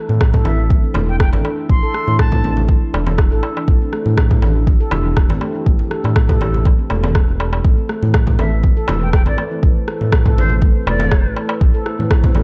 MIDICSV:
0, 0, Header, 1, 7, 480
1, 0, Start_track
1, 0, Tempo, 495868
1, 1642, Time_signature, 4, 2, 24, 8
1, 12033, End_track
2, 0, Start_track
2, 0, Title_t, "Flute"
2, 0, Program_c, 0, 73
2, 440, Note_on_c, 0, 76, 83
2, 600, Note_off_c, 0, 76, 0
2, 1048, Note_on_c, 0, 79, 82
2, 1120, Note_off_c, 0, 79, 0
2, 1162, Note_on_c, 0, 79, 76
2, 1244, Note_off_c, 0, 79, 0
2, 1641, Note_on_c, 0, 84, 93
2, 2099, Note_off_c, 0, 84, 0
2, 2122, Note_on_c, 0, 81, 92
2, 2490, Note_off_c, 0, 81, 0
2, 8119, Note_on_c, 0, 76, 86
2, 8280, Note_off_c, 0, 76, 0
2, 8731, Note_on_c, 0, 79, 84
2, 8802, Note_off_c, 0, 79, 0
2, 8842, Note_on_c, 0, 79, 77
2, 8924, Note_off_c, 0, 79, 0
2, 8971, Note_on_c, 0, 74, 89
2, 9118, Note_off_c, 0, 74, 0
2, 10041, Note_on_c, 0, 72, 91
2, 10201, Note_off_c, 0, 72, 0
2, 10524, Note_on_c, 0, 74, 96
2, 11003, Note_off_c, 0, 74, 0
2, 12033, End_track
3, 0, Start_track
3, 0, Title_t, "Analog synth pad"
3, 0, Program_c, 1, 89
3, 0, Note_on_c, 1, 62, 85
3, 0, Note_on_c, 1, 64, 77
3, 0, Note_on_c, 1, 69, 88
3, 3523, Note_off_c, 1, 69, 0
3, 3563, Note_on_c, 1, 67, 91
3, 7361, Note_off_c, 1, 64, 0
3, 7363, Note_off_c, 1, 62, 0
3, 7364, Note_off_c, 1, 67, 0
3, 7398, Note_on_c, 1, 64, 75
3, 7399, Note_on_c, 1, 57, 83
3, 7399, Note_on_c, 1, 71, 76
3, 7399, Note_on_c, 1, 72, 90
3, 12033, Note_off_c, 1, 57, 0
3, 12033, Note_off_c, 1, 64, 0
3, 12033, Note_off_c, 1, 71, 0
3, 12033, Note_off_c, 1, 72, 0
3, 12033, End_track
4, 0, Start_track
4, 0, Title_t, "Handpan"
4, 0, Program_c, 2, 114
4, 329, Note_on_c, 2, 69, 96
4, 390, Note_off_c, 2, 69, 0
4, 441, Note_on_c, 2, 64, 70
4, 557, Note_off_c, 2, 64, 0
4, 570, Note_on_c, 2, 52, 72
4, 630, Note_off_c, 2, 52, 0
4, 682, Note_on_c, 2, 57, 72
4, 804, Note_off_c, 2, 57, 0
4, 809, Note_on_c, 2, 60, 72
4, 910, Note_off_c, 2, 60, 0
4, 921, Note_on_c, 2, 57, 96
4, 990, Note_off_c, 2, 57, 0
4, 1050, Note_on_c, 2, 52, 67
4, 1151, Note_off_c, 2, 52, 0
4, 1401, Note_on_c, 2, 69, 74
4, 1523, Note_off_c, 2, 69, 0
4, 1769, Note_on_c, 2, 69, 95
4, 1830, Note_off_c, 2, 69, 0
4, 1881, Note_on_c, 2, 64, 73
4, 1996, Note_off_c, 2, 64, 0
4, 2010, Note_on_c, 2, 52, 76
4, 2070, Note_off_c, 2, 52, 0
4, 2121, Note_on_c, 2, 57, 79
4, 2243, Note_off_c, 2, 57, 0
4, 2250, Note_on_c, 2, 60, 73
4, 2350, Note_off_c, 2, 60, 0
4, 2360, Note_on_c, 2, 57, 93
4, 2430, Note_off_c, 2, 57, 0
4, 2490, Note_on_c, 2, 52, 67
4, 2590, Note_off_c, 2, 52, 0
4, 2842, Note_on_c, 2, 69, 70
4, 2963, Note_off_c, 2, 69, 0
4, 3212, Note_on_c, 2, 69, 94
4, 3271, Note_off_c, 2, 69, 0
4, 3322, Note_on_c, 2, 64, 77
4, 3437, Note_off_c, 2, 64, 0
4, 3451, Note_on_c, 2, 52, 72
4, 3511, Note_off_c, 2, 52, 0
4, 3562, Note_on_c, 2, 57, 79
4, 3683, Note_off_c, 2, 57, 0
4, 3690, Note_on_c, 2, 60, 73
4, 3791, Note_off_c, 2, 60, 0
4, 3802, Note_on_c, 2, 57, 99
4, 3871, Note_off_c, 2, 57, 0
4, 3931, Note_on_c, 2, 52, 74
4, 4031, Note_off_c, 2, 52, 0
4, 4282, Note_on_c, 2, 69, 68
4, 4403, Note_off_c, 2, 69, 0
4, 4650, Note_on_c, 2, 69, 95
4, 4710, Note_off_c, 2, 69, 0
4, 4762, Note_on_c, 2, 64, 72
4, 4877, Note_off_c, 2, 64, 0
4, 4890, Note_on_c, 2, 52, 71
4, 4950, Note_off_c, 2, 52, 0
4, 5002, Note_on_c, 2, 57, 82
4, 5124, Note_off_c, 2, 57, 0
4, 5131, Note_on_c, 2, 60, 75
4, 5231, Note_off_c, 2, 60, 0
4, 5242, Note_on_c, 2, 57, 101
4, 5311, Note_off_c, 2, 57, 0
4, 5371, Note_on_c, 2, 52, 74
4, 5471, Note_off_c, 2, 52, 0
4, 5721, Note_on_c, 2, 69, 77
4, 5843, Note_off_c, 2, 69, 0
4, 6090, Note_on_c, 2, 69, 100
4, 6150, Note_off_c, 2, 69, 0
4, 6203, Note_on_c, 2, 64, 72
4, 6317, Note_off_c, 2, 64, 0
4, 6332, Note_on_c, 2, 52, 72
4, 6391, Note_off_c, 2, 52, 0
4, 6443, Note_on_c, 2, 57, 74
4, 6564, Note_off_c, 2, 57, 0
4, 6570, Note_on_c, 2, 60, 72
4, 6670, Note_off_c, 2, 60, 0
4, 6682, Note_on_c, 2, 57, 97
4, 6751, Note_off_c, 2, 57, 0
4, 6809, Note_on_c, 2, 52, 71
4, 6910, Note_off_c, 2, 52, 0
4, 7159, Note_on_c, 2, 69, 73
4, 7282, Note_off_c, 2, 69, 0
4, 7400, Note_on_c, 2, 57, 81
4, 7523, Note_off_c, 2, 57, 0
4, 7527, Note_on_c, 2, 60, 69
4, 7629, Note_off_c, 2, 60, 0
4, 7639, Note_on_c, 2, 57, 101
4, 7709, Note_off_c, 2, 57, 0
4, 7768, Note_on_c, 2, 52, 74
4, 7870, Note_off_c, 2, 52, 0
4, 8118, Note_on_c, 2, 69, 72
4, 8242, Note_off_c, 2, 69, 0
4, 8488, Note_on_c, 2, 69, 94
4, 8549, Note_off_c, 2, 69, 0
4, 8599, Note_on_c, 2, 64, 70
4, 8715, Note_off_c, 2, 64, 0
4, 8729, Note_on_c, 2, 52, 71
4, 8790, Note_off_c, 2, 52, 0
4, 8840, Note_on_c, 2, 57, 78
4, 8963, Note_off_c, 2, 57, 0
4, 8969, Note_on_c, 2, 60, 74
4, 9070, Note_off_c, 2, 60, 0
4, 9079, Note_on_c, 2, 57, 102
4, 9149, Note_off_c, 2, 57, 0
4, 9208, Note_on_c, 2, 52, 74
4, 9309, Note_off_c, 2, 52, 0
4, 9560, Note_on_c, 2, 69, 73
4, 9682, Note_off_c, 2, 69, 0
4, 9928, Note_on_c, 2, 69, 104
4, 9989, Note_off_c, 2, 69, 0
4, 10038, Note_on_c, 2, 64, 68
4, 10155, Note_off_c, 2, 64, 0
4, 10166, Note_on_c, 2, 52, 73
4, 10228, Note_off_c, 2, 52, 0
4, 10279, Note_on_c, 2, 57, 77
4, 10402, Note_off_c, 2, 57, 0
4, 10408, Note_on_c, 2, 60, 72
4, 10509, Note_off_c, 2, 60, 0
4, 10518, Note_on_c, 2, 57, 97
4, 10589, Note_off_c, 2, 57, 0
4, 10648, Note_on_c, 2, 52, 71
4, 10749, Note_off_c, 2, 52, 0
4, 10999, Note_on_c, 2, 69, 74
4, 11122, Note_off_c, 2, 69, 0
4, 11367, Note_on_c, 2, 69, 97
4, 11429, Note_off_c, 2, 69, 0
4, 11479, Note_on_c, 2, 64, 77
4, 11595, Note_off_c, 2, 64, 0
4, 11608, Note_on_c, 2, 52, 71
4, 11669, Note_off_c, 2, 52, 0
4, 11720, Note_on_c, 2, 57, 76
4, 11842, Note_off_c, 2, 57, 0
4, 11850, Note_on_c, 2, 60, 74
4, 11950, Note_off_c, 2, 60, 0
4, 11961, Note_on_c, 2, 57, 95
4, 12030, Note_off_c, 2, 57, 0
4, 12033, End_track
5, 0, Start_track
5, 0, Title_t, "Analog synth bass"
5, 0, Program_c, 3, 38
5, 88, Note_on_c, 3, 45, 81
5, 410, Note_off_c, 3, 45, 0
5, 440, Note_on_c, 3, 33, 90
5, 773, Note_off_c, 3, 33, 0
5, 920, Note_on_c, 3, 28, 98
5, 1288, Note_on_c, 3, 33, 95
5, 1303, Note_off_c, 3, 28, 0
5, 1381, Note_off_c, 3, 33, 0
5, 1641, Note_on_c, 3, 33, 98
5, 1747, Note_off_c, 3, 33, 0
5, 2008, Note_on_c, 3, 45, 78
5, 2330, Note_off_c, 3, 45, 0
5, 2359, Note_on_c, 3, 33, 100
5, 2693, Note_off_c, 3, 33, 0
5, 2841, Note_on_c, 3, 28, 96
5, 3209, Note_on_c, 3, 33, 94
5, 3223, Note_off_c, 3, 28, 0
5, 3301, Note_off_c, 3, 33, 0
5, 3562, Note_on_c, 3, 33, 98
5, 3668, Note_off_c, 3, 33, 0
5, 3929, Note_on_c, 3, 45, 78
5, 4250, Note_off_c, 3, 45, 0
5, 4281, Note_on_c, 3, 33, 94
5, 4614, Note_off_c, 3, 33, 0
5, 4761, Note_on_c, 3, 28, 98
5, 5129, Note_on_c, 3, 33, 90
5, 5144, Note_off_c, 3, 28, 0
5, 5222, Note_off_c, 3, 33, 0
5, 5483, Note_on_c, 3, 33, 94
5, 5588, Note_off_c, 3, 33, 0
5, 5848, Note_on_c, 3, 45, 78
5, 6169, Note_off_c, 3, 45, 0
5, 6201, Note_on_c, 3, 33, 92
5, 6534, Note_off_c, 3, 33, 0
5, 6679, Note_on_c, 3, 28, 94
5, 7013, Note_off_c, 3, 28, 0
5, 7048, Note_on_c, 3, 28, 86
5, 7369, Note_off_c, 3, 28, 0
5, 7401, Note_on_c, 3, 33, 98
5, 7507, Note_off_c, 3, 33, 0
5, 7768, Note_on_c, 3, 45, 77
5, 8090, Note_off_c, 3, 45, 0
5, 8120, Note_on_c, 3, 33, 94
5, 8453, Note_off_c, 3, 33, 0
5, 8599, Note_on_c, 3, 28, 100
5, 8968, Note_on_c, 3, 33, 91
5, 8983, Note_off_c, 3, 28, 0
5, 9061, Note_off_c, 3, 33, 0
5, 9320, Note_on_c, 3, 33, 102
5, 9427, Note_off_c, 3, 33, 0
5, 9689, Note_on_c, 3, 45, 77
5, 10010, Note_off_c, 3, 45, 0
5, 10040, Note_on_c, 3, 33, 93
5, 10373, Note_off_c, 3, 33, 0
5, 10520, Note_on_c, 3, 28, 102
5, 10889, Note_on_c, 3, 33, 96
5, 10903, Note_off_c, 3, 28, 0
5, 10981, Note_off_c, 3, 33, 0
5, 11239, Note_on_c, 3, 33, 98
5, 11346, Note_off_c, 3, 33, 0
5, 11607, Note_on_c, 3, 45, 76
5, 11929, Note_off_c, 3, 45, 0
5, 11959, Note_on_c, 3, 33, 99
5, 12033, Note_off_c, 3, 33, 0
5, 12033, End_track
6, 0, Start_track
6, 0, Title_t, "Darbuka"
6, 436, Note_on_c, 9, 63, 53
6, 533, Note_off_c, 9, 63, 0
6, 913, Note_on_c, 9, 62, 74
6, 918, Note_on_c, 9, 63, 78
6, 1009, Note_off_c, 9, 62, 0
6, 1015, Note_off_c, 9, 63, 0
6, 1284, Note_on_c, 9, 62, 71
6, 1381, Note_off_c, 9, 62, 0
6, 1402, Note_on_c, 9, 63, 68
6, 1498, Note_off_c, 9, 63, 0
6, 2846, Note_on_c, 9, 63, 87
6, 2943, Note_off_c, 9, 63, 0
6, 2969, Note_on_c, 9, 62, 70
6, 3065, Note_off_c, 9, 62, 0
6, 3078, Note_on_c, 9, 63, 50
6, 3175, Note_off_c, 9, 63, 0
6, 3319, Note_on_c, 9, 62, 91
6, 3416, Note_off_c, 9, 62, 0
6, 3455, Note_on_c, 9, 63, 67
6, 3552, Note_off_c, 9, 63, 0
6, 4281, Note_on_c, 9, 63, 52
6, 4377, Note_off_c, 9, 63, 0
6, 4755, Note_on_c, 9, 63, 92
6, 4759, Note_on_c, 9, 62, 69
6, 4852, Note_off_c, 9, 63, 0
6, 4856, Note_off_c, 9, 62, 0
6, 5130, Note_on_c, 9, 62, 72
6, 5227, Note_off_c, 9, 62, 0
6, 5238, Note_on_c, 9, 63, 72
6, 5335, Note_off_c, 9, 63, 0
6, 5855, Note_on_c, 9, 62, 79
6, 5952, Note_off_c, 9, 62, 0
6, 6210, Note_on_c, 9, 63, 62
6, 6307, Note_off_c, 9, 63, 0
6, 6451, Note_on_c, 9, 63, 59
6, 6548, Note_off_c, 9, 63, 0
6, 6679, Note_on_c, 9, 63, 83
6, 6776, Note_off_c, 9, 63, 0
6, 6811, Note_on_c, 9, 62, 80
6, 6908, Note_off_c, 9, 62, 0
6, 6922, Note_on_c, 9, 63, 50
6, 7019, Note_off_c, 9, 63, 0
6, 7163, Note_on_c, 9, 62, 102
6, 7260, Note_off_c, 9, 62, 0
6, 7287, Note_on_c, 9, 63, 74
6, 7383, Note_off_c, 9, 63, 0
6, 8123, Note_on_c, 9, 63, 61
6, 8219, Note_off_c, 9, 63, 0
6, 8593, Note_on_c, 9, 63, 96
6, 8604, Note_on_c, 9, 62, 83
6, 8690, Note_off_c, 9, 63, 0
6, 8700, Note_off_c, 9, 62, 0
6, 8971, Note_on_c, 9, 62, 77
6, 9068, Note_off_c, 9, 62, 0
6, 9079, Note_on_c, 9, 63, 74
6, 9176, Note_off_c, 9, 63, 0
6, 10523, Note_on_c, 9, 63, 99
6, 10620, Note_off_c, 9, 63, 0
6, 10642, Note_on_c, 9, 62, 74
6, 10739, Note_off_c, 9, 62, 0
6, 10756, Note_on_c, 9, 63, 57
6, 10853, Note_off_c, 9, 63, 0
6, 11001, Note_on_c, 9, 62, 97
6, 11098, Note_off_c, 9, 62, 0
6, 11122, Note_on_c, 9, 63, 88
6, 11219, Note_off_c, 9, 63, 0
6, 11957, Note_on_c, 9, 63, 55
6, 12033, Note_off_c, 9, 63, 0
6, 12033, End_track
7, 0, Start_track
7, 0, Title_t, "Drums"
7, 90, Note_on_c, 9, 63, 58
7, 187, Note_off_c, 9, 63, 0
7, 201, Note_on_c, 9, 36, 118
7, 201, Note_on_c, 9, 37, 105
7, 298, Note_off_c, 9, 36, 0
7, 298, Note_off_c, 9, 37, 0
7, 327, Note_on_c, 9, 64, 102
7, 329, Note_on_c, 9, 36, 79
7, 423, Note_off_c, 9, 64, 0
7, 426, Note_off_c, 9, 36, 0
7, 437, Note_on_c, 9, 63, 99
7, 534, Note_off_c, 9, 63, 0
7, 681, Note_on_c, 9, 36, 115
7, 689, Note_on_c, 9, 63, 61
7, 778, Note_off_c, 9, 36, 0
7, 786, Note_off_c, 9, 63, 0
7, 913, Note_on_c, 9, 64, 90
7, 919, Note_on_c, 9, 63, 93
7, 1010, Note_off_c, 9, 64, 0
7, 1015, Note_off_c, 9, 63, 0
7, 1161, Note_on_c, 9, 36, 114
7, 1161, Note_on_c, 9, 37, 96
7, 1258, Note_off_c, 9, 36, 0
7, 1258, Note_off_c, 9, 37, 0
7, 1291, Note_on_c, 9, 63, 99
7, 1387, Note_off_c, 9, 63, 0
7, 1640, Note_on_c, 9, 36, 108
7, 1737, Note_off_c, 9, 36, 0
7, 1881, Note_on_c, 9, 37, 55
7, 1978, Note_off_c, 9, 37, 0
7, 2011, Note_on_c, 9, 63, 56
7, 2107, Note_off_c, 9, 63, 0
7, 2121, Note_on_c, 9, 36, 113
7, 2121, Note_on_c, 9, 37, 96
7, 2218, Note_off_c, 9, 36, 0
7, 2218, Note_off_c, 9, 37, 0
7, 2244, Note_on_c, 9, 64, 105
7, 2249, Note_on_c, 9, 36, 75
7, 2341, Note_off_c, 9, 64, 0
7, 2346, Note_off_c, 9, 36, 0
7, 2364, Note_on_c, 9, 63, 87
7, 2461, Note_off_c, 9, 63, 0
7, 2486, Note_on_c, 9, 64, 77
7, 2582, Note_off_c, 9, 64, 0
7, 2597, Note_on_c, 9, 63, 61
7, 2601, Note_on_c, 9, 36, 106
7, 2694, Note_off_c, 9, 63, 0
7, 2697, Note_off_c, 9, 36, 0
7, 2847, Note_on_c, 9, 64, 92
7, 2943, Note_off_c, 9, 64, 0
7, 2966, Note_on_c, 9, 63, 90
7, 3063, Note_off_c, 9, 63, 0
7, 3081, Note_on_c, 9, 36, 111
7, 3082, Note_on_c, 9, 37, 95
7, 3178, Note_off_c, 9, 36, 0
7, 3179, Note_off_c, 9, 37, 0
7, 3561, Note_on_c, 9, 36, 111
7, 3658, Note_off_c, 9, 36, 0
7, 3802, Note_on_c, 9, 37, 56
7, 3899, Note_off_c, 9, 37, 0
7, 3927, Note_on_c, 9, 63, 54
7, 4023, Note_off_c, 9, 63, 0
7, 4042, Note_on_c, 9, 36, 107
7, 4042, Note_on_c, 9, 37, 104
7, 4139, Note_off_c, 9, 36, 0
7, 4139, Note_off_c, 9, 37, 0
7, 4171, Note_on_c, 9, 36, 76
7, 4171, Note_on_c, 9, 64, 89
7, 4267, Note_off_c, 9, 36, 0
7, 4268, Note_off_c, 9, 64, 0
7, 4282, Note_on_c, 9, 63, 98
7, 4379, Note_off_c, 9, 63, 0
7, 4522, Note_on_c, 9, 36, 109
7, 4529, Note_on_c, 9, 63, 61
7, 4619, Note_off_c, 9, 36, 0
7, 4626, Note_off_c, 9, 63, 0
7, 4761, Note_on_c, 9, 63, 86
7, 4766, Note_on_c, 9, 64, 101
7, 4858, Note_off_c, 9, 63, 0
7, 4863, Note_off_c, 9, 64, 0
7, 5002, Note_on_c, 9, 36, 110
7, 5002, Note_on_c, 9, 37, 92
7, 5098, Note_off_c, 9, 37, 0
7, 5099, Note_off_c, 9, 36, 0
7, 5128, Note_on_c, 9, 63, 97
7, 5225, Note_off_c, 9, 63, 0
7, 5482, Note_on_c, 9, 36, 106
7, 5579, Note_off_c, 9, 36, 0
7, 5606, Note_on_c, 9, 63, 57
7, 5703, Note_off_c, 9, 63, 0
7, 5721, Note_on_c, 9, 37, 57
7, 5818, Note_off_c, 9, 37, 0
7, 5849, Note_on_c, 9, 63, 58
7, 5946, Note_off_c, 9, 63, 0
7, 5962, Note_on_c, 9, 36, 112
7, 5962, Note_on_c, 9, 37, 98
7, 6058, Note_off_c, 9, 37, 0
7, 6059, Note_off_c, 9, 36, 0
7, 6090, Note_on_c, 9, 36, 79
7, 6092, Note_on_c, 9, 64, 112
7, 6186, Note_off_c, 9, 36, 0
7, 6189, Note_off_c, 9, 64, 0
7, 6204, Note_on_c, 9, 63, 100
7, 6300, Note_off_c, 9, 63, 0
7, 6334, Note_on_c, 9, 64, 84
7, 6431, Note_off_c, 9, 64, 0
7, 6441, Note_on_c, 9, 36, 112
7, 6441, Note_on_c, 9, 63, 62
7, 6537, Note_off_c, 9, 63, 0
7, 6538, Note_off_c, 9, 36, 0
7, 6683, Note_on_c, 9, 64, 91
7, 6780, Note_off_c, 9, 64, 0
7, 6809, Note_on_c, 9, 63, 100
7, 6905, Note_off_c, 9, 63, 0
7, 6921, Note_on_c, 9, 36, 110
7, 6921, Note_on_c, 9, 37, 94
7, 7018, Note_off_c, 9, 36, 0
7, 7018, Note_off_c, 9, 37, 0
7, 7401, Note_on_c, 9, 36, 114
7, 7498, Note_off_c, 9, 36, 0
7, 7641, Note_on_c, 9, 37, 59
7, 7738, Note_off_c, 9, 37, 0
7, 7769, Note_on_c, 9, 63, 55
7, 7866, Note_off_c, 9, 63, 0
7, 7879, Note_on_c, 9, 37, 106
7, 7881, Note_on_c, 9, 36, 117
7, 7976, Note_off_c, 9, 37, 0
7, 7978, Note_off_c, 9, 36, 0
7, 8003, Note_on_c, 9, 64, 102
7, 8009, Note_on_c, 9, 36, 81
7, 8100, Note_off_c, 9, 64, 0
7, 8106, Note_off_c, 9, 36, 0
7, 8119, Note_on_c, 9, 63, 110
7, 8216, Note_off_c, 9, 63, 0
7, 8357, Note_on_c, 9, 63, 63
7, 8361, Note_on_c, 9, 36, 109
7, 8454, Note_off_c, 9, 63, 0
7, 8457, Note_off_c, 9, 36, 0
7, 8603, Note_on_c, 9, 64, 97
7, 8604, Note_on_c, 9, 63, 103
7, 8700, Note_off_c, 9, 64, 0
7, 8701, Note_off_c, 9, 63, 0
7, 8840, Note_on_c, 9, 37, 98
7, 8841, Note_on_c, 9, 36, 121
7, 8937, Note_off_c, 9, 37, 0
7, 8938, Note_off_c, 9, 36, 0
7, 8962, Note_on_c, 9, 63, 99
7, 9059, Note_off_c, 9, 63, 0
7, 9321, Note_on_c, 9, 36, 125
7, 9417, Note_off_c, 9, 36, 0
7, 9562, Note_on_c, 9, 37, 62
7, 9659, Note_off_c, 9, 37, 0
7, 9689, Note_on_c, 9, 63, 58
7, 9786, Note_off_c, 9, 63, 0
7, 9800, Note_on_c, 9, 36, 121
7, 9800, Note_on_c, 9, 37, 114
7, 9897, Note_off_c, 9, 36, 0
7, 9897, Note_off_c, 9, 37, 0
7, 9928, Note_on_c, 9, 64, 99
7, 9929, Note_on_c, 9, 36, 83
7, 10025, Note_off_c, 9, 36, 0
7, 10025, Note_off_c, 9, 64, 0
7, 10051, Note_on_c, 9, 63, 114
7, 10148, Note_off_c, 9, 63, 0
7, 10159, Note_on_c, 9, 64, 85
7, 10256, Note_off_c, 9, 64, 0
7, 10276, Note_on_c, 9, 63, 68
7, 10280, Note_on_c, 9, 36, 114
7, 10373, Note_off_c, 9, 63, 0
7, 10377, Note_off_c, 9, 36, 0
7, 10524, Note_on_c, 9, 64, 96
7, 10620, Note_off_c, 9, 64, 0
7, 10646, Note_on_c, 9, 63, 106
7, 10743, Note_off_c, 9, 63, 0
7, 10759, Note_on_c, 9, 37, 102
7, 10760, Note_on_c, 9, 36, 119
7, 10856, Note_off_c, 9, 37, 0
7, 10857, Note_off_c, 9, 36, 0
7, 11240, Note_on_c, 9, 36, 127
7, 11337, Note_off_c, 9, 36, 0
7, 11481, Note_on_c, 9, 37, 61
7, 11577, Note_off_c, 9, 37, 0
7, 11615, Note_on_c, 9, 63, 62
7, 11711, Note_off_c, 9, 63, 0
7, 11719, Note_on_c, 9, 36, 126
7, 11719, Note_on_c, 9, 37, 110
7, 11816, Note_off_c, 9, 36, 0
7, 11816, Note_off_c, 9, 37, 0
7, 11845, Note_on_c, 9, 64, 107
7, 11848, Note_on_c, 9, 36, 87
7, 11942, Note_off_c, 9, 64, 0
7, 11945, Note_off_c, 9, 36, 0
7, 11951, Note_on_c, 9, 63, 97
7, 12033, Note_off_c, 9, 63, 0
7, 12033, End_track
0, 0, End_of_file